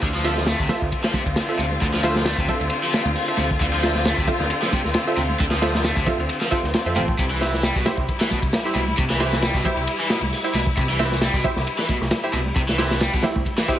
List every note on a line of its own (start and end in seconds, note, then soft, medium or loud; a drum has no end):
0.02 0.52 D2 loud
0.02 7.15 D3 medium
0.02 0.07 D3 medium
0.02 7.15 C4 medium
0.02 7.15 F4 medium
0.02 kick loud
0.02 ride loud
0.15 0.46 F3 medium
0.24 0.37 F4 medium
0.24 0.37 A4 medium
0.24 0.37 C5 medium
0.24 0.37 E5 loud
0.24 snare soft
0.24 ride medium
0.38 snare soft
0.47 0.58 A3 loud
0.47 snare loud
0.47 ride medium
0.59 0.66 D2 loud
0.59 0.69 C3 medium
0.59 kick medium
0.69 0.88 F4 medium
0.69 0.88 A4 medium
0.69 0.89 C5 medium
0.69 0.88 E5 medium
0.69 snare loud
0.69 ride medium
0.69 low conga loud
0.82 0.88 D2 loud
0.82 kick medium
0.92 kick medium
0.92 ride medium
1.04 1.13 F3 medium
1.04 snare loud
1.04 ride medium
1.13 1.22 C3 medium
1.13 kick medium
1.13 high conga medium
1.13 low conga medium
1.26 1.32 D2 medium
1.26 kick medium
1.26 ride medium
1.36 snare loud
1.36 ride loud
1.49 1.59 F4 medium
1.49 1.59 A4 medium
1.49 1.59 C5 medium
1.49 1.59 E5 medium
1.59 1.74 D2 medium
1.59 1.64 C3 medium
1.59 ride medium
1.59 muted conga medium
1.71 high conga medium
1.81 2.31 D2 loud
1.81 1.86 D3 medium
1.81 kick loud
1.81 ride medium
1.94 2.25 F3 medium
1.94 snare soft
1.94 muted conga soft
2.03 2.16 F4 medium
2.03 2.16 A4 medium
2.03 2.16 C5 medium
2.03 2.16 E5 loud
2.03 snare medium
2.03 ride medium
2.16 snare medium
2.25 2.37 A3 loud
2.25 snare loud
2.25 ride medium
2.38 2.44 D2 loud
2.38 2.48 C3 medium
2.38 kick loud
2.48 2.68 F4 medium
2.48 2.68 A4 medium
2.48 2.68 C5 medium
2.48 2.68 E5 medium
2.48 kick loud
2.48 ride medium
2.48 low conga medium
2.61 2.67 D2 loud
2.61 ride soft
2.70 ride medium
2.83 2.92 F3 medium
2.93 3.01 C3 medium
2.93 snare loud
2.93 ride medium
3.05 3.12 D2 medium
3.05 ride soft
3.05 high conga medium
3.16 open hi-hat medium
3.28 3.39 F4 medium
3.28 3.39 A4 medium
3.28 3.39 C5 medium
3.28 3.39 E5 medium
3.28 ride soft
3.37 3.53 D2 medium
3.37 3.43 C3 medium
3.37 ride medium
3.37 high conga loud
3.51 kick medium
3.60 4.10 D2 loud
3.60 3.65 D3 medium
3.60 kick loud
3.60 ride loud
3.73 4.04 F3 medium
3.83 3.96 F4 medium
3.83 3.96 A4 medium
3.83 3.96 C5 medium
3.83 3.96 E5 medium
3.83 snare medium
3.83 ride medium
3.95 snare soft
4.05 4.16 A3 loud
4.05 snare loud
4.05 ride medium
4.18 4.24 D2 loud
4.18 4.27 C3 medium
4.18 kick loud
4.27 4.47 F4 medium
4.27 4.47 A4 medium
4.27 4.47 C5 medium
4.27 4.47 E5 medium
4.27 kick loud
4.27 ride medium
4.27 low conga loud
4.40 4.46 D2 loud
4.40 snare soft
4.50 ride medium
4.62 4.71 F3 medium
4.62 snare soft
4.72 4.80 C3 medium
4.72 kick loud
4.72 ride medium
4.72 high conga medium
4.72 low conga medium
4.85 4.91 D2 medium
4.85 snare soft
4.94 snare loud
4.94 ride medium
5.07 5.18 F4 medium
5.07 5.18 A4 medium
5.07 5.18 C5 medium
5.07 5.18 E5 medium
5.16 5.32 D2 medium
5.16 5.22 C3 medium
5.16 ride medium
5.16 muted conga soft
5.29 high conga medium
5.39 5.89 D2 loud
5.39 5.44 D3 medium
5.39 kick loud
5.39 ride medium
5.50 5.83 F3 medium
5.50 snare medium
5.50 muted conga soft
5.62 5.75 F4 medium
5.62 5.75 A4 medium
5.62 5.75 C5 medium
5.62 5.75 E5 loud
5.62 snare medium
5.62 ride medium
5.75 snare medium
5.84 5.95 A3 loud
5.84 snare loud
5.84 ride medium
5.96 6.03 D2 loud
5.96 6.06 C3 medium
5.96 kick medium
6.06 6.26 F4 medium
6.06 6.26 A4 medium
6.06 6.26 C5 medium
6.06 6.26 E5 medium
6.06 kick loud
6.06 ride medium
6.06 low conga loud
6.19 6.25 D2 loud
6.19 ride soft
6.29 ride medium
6.41 6.50 F3 medium
6.41 snare soft
6.51 6.59 C3 medium
6.51 6.64 F4 loud
6.51 6.64 A4 medium
6.51 6.64 C5 medium
6.51 6.64 E5 loud
6.51 kick medium
6.51 ride medium
6.64 6.70 D2 medium
6.64 snare soft
6.64 high conga medium
6.74 snare loud
6.74 ride medium
6.86 6.98 F2 medium
6.86 6.95 F4 medium
6.86 6.95 A4 medium
6.86 6.95 C5 medium
6.86 6.95 E5 medium
6.96 7.11 A1 loud
6.96 7.01 C3 medium
6.96 7.15 F4 medium
6.96 7.15 A4 medium
6.96 7.15 C5 medium
6.96 7.15 G5 medium
6.96 ride medium
6.96 high conga medium
7.08 kick loud
7.18 7.68 C2 loud
7.18 7.23 C3 medium
7.18 13.79 G3 medium
7.18 13.79 E4 medium
7.18 kick loud
7.18 ride medium
7.30 7.62 E3 medium
7.41 7.54 E4 medium
7.41 7.54 G4 medium
7.41 7.54 C5 medium
7.41 7.54 E5 loud
7.41 snare soft
7.41 ride medium
7.54 snare soft
7.63 7.74 G3 loud
7.63 snare loud
7.63 ride loud
7.75 7.82 C2 loud
7.75 7.85 B2 medium
7.75 kick loud
7.86 8.05 E4 medium
7.86 8.05 G4 medium
7.86 8.05 C5 medium
7.86 8.05 E5 medium
7.86 snare loud
7.86 ride medium
7.86 low conga medium
7.97 8.04 C2 loud
7.97 kick medium
8.08 kick medium
8.08 ride medium
8.20 8.29 E3 medium
8.20 snare loud
8.20 ride medium
8.30 8.38 B2 medium
8.30 kick medium
8.30 high conga medium
8.30 low conga medium
8.42 8.49 C2 medium
8.42 kick medium
8.42 ride medium
8.53 snare loud
8.53 ride medium
8.65 8.76 E4 medium
8.65 8.76 G4 medium
8.65 8.76 C5 medium
8.65 8.76 E5 medium
8.75 8.90 C2 medium
8.75 8.80 B2 medium
8.75 ride medium
8.75 muted conga soft
8.88 high conga medium
8.97 9.47 C2 loud
8.97 9.02 C3 medium
8.97 kick loud
8.97 ride medium
9.10 9.41 E3 medium
9.10 snare medium
9.10 muted conga soft
9.20 9.33 E4 medium
9.20 9.33 G4 medium
9.20 9.33 C5 medium
9.20 9.33 E5 loud
9.20 snare medium
9.20 ride medium
9.33 snare medium
9.42 9.54 G3 loud
9.42 snare loud
9.42 ride medium
9.54 9.61 C2 loud
9.54 9.64 B2 medium
9.54 kick medium
9.64 9.84 E4 medium
9.64 9.84 G4 medium
9.64 9.84 C5 medium
9.64 9.84 E5 medium
9.64 kick loud
9.64 ride medium
9.64 low conga medium
9.77 9.83 C2 loud
9.77 ride soft
9.87 ride medium
10.00 10.09 E3 medium
10.10 10.17 B2 medium
10.10 snare loud
10.10 ride medium
10.21 10.28 C2 medium
10.21 ride soft
10.21 high conga medium
10.33 open hi-hat medium
10.44 10.55 E4 medium
10.44 10.55 G4 medium
10.44 10.55 C5 medium
10.44 10.55 E5 medium
10.44 ride soft
10.54 10.69 C2 medium
10.54 10.59 B2 medium
10.54 ride medium
10.54 high conga loud
10.66 kick loud
10.77 11.26 C2 loud
10.77 10.81 C3 medium
10.77 kick loud
10.77 ride medium
10.89 11.21 E3 medium
10.99 11.12 E4 medium
10.99 11.12 G4 medium
10.99 11.12 C5 medium
10.99 11.12 E5 loud
10.99 snare medium
10.99 ride medium
11.12 snare soft
11.21 11.33 G3 loud
11.21 snare loud
11.21 ride medium
11.33 11.40 C2 loud
11.33 11.43 B2 medium
11.33 kick loud
11.44 11.63 E4 medium
11.44 11.63 G4 medium
11.44 11.63 C5 medium
11.44 11.63 E5 medium
11.44 kick medium
11.44 ride medium
11.44 low conga loud
11.56 11.63 C2 loud
11.56 snare soft
11.67 ride medium
11.79 11.88 E3 medium
11.79 snare soft
11.89 11.96 B2 medium
11.89 kick medium
11.89 ride medium
11.89 high conga medium
11.89 low conga medium
12.01 12.07 C2 medium
12.01 snare soft
12.11 snare loud
12.11 ride medium
12.24 12.34 E4 medium
12.24 12.34 G4 medium
12.24 12.34 C5 medium
12.24 12.34 E5 medium
12.33 12.48 C2 medium
12.33 12.38 B2 medium
12.33 ride medium
12.33 muted conga medium
12.46 high conga medium
12.56 13.05 C2 loud
12.56 12.61 C3 medium
12.56 kick loud
12.56 ride medium
12.68 13.00 E3 medium
12.68 snare medium
12.68 muted conga soft
12.78 12.91 E4 medium
12.78 12.91 G4 medium
12.78 12.91 C5 medium
12.78 12.91 E5 loud
12.78 snare medium
12.78 ride medium
12.91 snare medium
13.00 13.12 G3 loud
13.00 snare loud
13.00 ride medium
13.13 13.20 C2 loud
13.13 13.22 B2 medium
13.13 kick loud
13.23 13.42 E4 medium
13.23 13.42 G4 medium
13.23 13.42 C5 medium
13.23 13.42 E5 medium
13.23 snare loud
13.23 ride medium
13.23 low conga loud
13.35 13.42 C2 loud
13.35 kick medium
13.35 high conga medium
13.45 kick medium
13.45 ride medium
13.58 13.67 E3 medium
13.58 snare loud
13.58 ride medium
13.68 13.76 B2 medium
13.68 13.79 E4 loud
13.68 13.79 G4 medium
13.68 13.79 C5 medium
13.68 13.79 E5 loud
13.68 kick medium